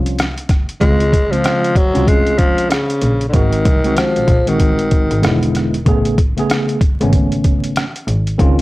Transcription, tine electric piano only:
0.00 0.25 F3 medium
0.00 0.25 C4 medium
0.00 0.25 C#4 medium
0.00 0.26 F4 medium
0.80 1.12 C#3 medium
0.80 1.13 G#3 medium
0.80 1.13 C4 medium
0.80 1.14 F4 medium
1.31 1.71 C#3 medium
1.31 1.72 G#3 medium
1.31 1.72 C4 medium
1.31 1.73 F4 medium
1.94 2.78 G#3 medium
1.94 2.78 C4 medium
1.94 2.77 C#4 medium
1.94 2.79 F4 medium
3.33 3.65 D#3 medium
3.33 3.66 G#3 medium
3.33 3.66 C4 medium
3.33 3.66 F#4 medium
3.84 4.24 D#3 medium
3.84 4.24 G#3 medium
3.84 4.25 C4 medium
3.84 4.26 F#4 medium
4.46 5.22 D#3 medium
4.46 5.22 G#3 medium
4.46 5.23 C4 medium
4.46 5.24 F#4 medium
5.22 5.76 D3 medium
5.22 5.76 G#3 medium
5.22 5.77 B3 medium
5.22 5.77 E4 medium
5.85 6.18 C#3 medium
5.85 6.18 A3 medium
5.85 6.19 B3 medium
5.85 6.19 G#4 medium
6.37 6.77 C#3 medium
6.37 6.77 A3 medium
6.37 6.78 B3 medium
6.37 6.78 G#4 medium
7.00 7.83 C#3 medium
7.00 7.84 A3 medium
7.00 7.84 B3 medium
7.00 7.84 C#4 medium
8.38 8.62 D#3 medium
8.38 8.62 C4 medium
8.38 8.62 C#4 medium
8.38 8.62 F4 medium

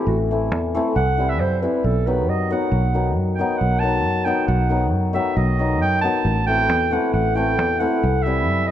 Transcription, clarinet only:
0.08 0.18 F#4 medium
0.96 1.31 F#5 medium
1.29 1.42 E5 loud
1.40 1.61 C5 medium
1.62 1.87 B4 medium
1.85 2.08 A4 medium
2.07 2.31 B4 medium
2.29 2.50 D#5 medium
2.52 3.13 F#5 medium
3.35 3.59 G5 medium
3.57 3.81 F#5 medium
3.79 4.26 A5 loud
4.25 4.46 G5 medium
4.47 4.89 F#5 medium
5.15 5.38 E5 medium
5.36 5.81 D#5 medium
5.82 6.01 G5 medium
6.02 6.44 A5 medium
6.46 6.94 G5 loud
6.92 7.13 F#5 medium
7.14 7.37 F#5 medium
7.35 7.81 G5 loud
7.79 8.24 F#5 medium
8.22 8.68 E5 medium
8.67 8.71 D#5 medium

